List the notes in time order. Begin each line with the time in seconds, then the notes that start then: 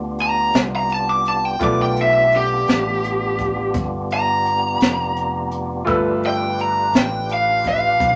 Already playing: D2 A3 B3 D4 F4 G4 B4 D5
0.18 A#5, closed hi-hat
0.53 C2, snare, closed hi-hat
0.76 A#5
0.90 A5, closed hi-hat
1.09 D6
1.25 A5, closed hi-hat
1.45 G5
1.59 B1 A3 B3 D4 F4 G4 B4 D5, kick, closed hi-hat
1.64 D6
1.82 G5
1.96 closed hi-hat
2.01 E5
2.32 closed hi-hat
2.36 G4
2.68 A1, snare, closed hi-hat
3.04 closed hi-hat
3.39 kick, closed hi-hat
3.74 G1, kick, closed hi-hat
4.10 A#5, closed hi-hat
4.46 closed hi-hat
4.80 F1, snare, closed hi-hat
5.16 closed hi-hat
5.51 closed hi-hat
5.84 G1 A3 D4 F4 B4 E6, kick, closed hi-hat
5.89 G4 B4
6.23 G5, closed hi-hat
6.59 A#5, closed hi-hat
6.93 A1, snare, closed hi-hat
6.98 G5
7.29 closed hi-hat
7.33 F5
7.65 kick, snare, closed hi-hat
7.69 F5
8.00 B1, kick, closed hi-hat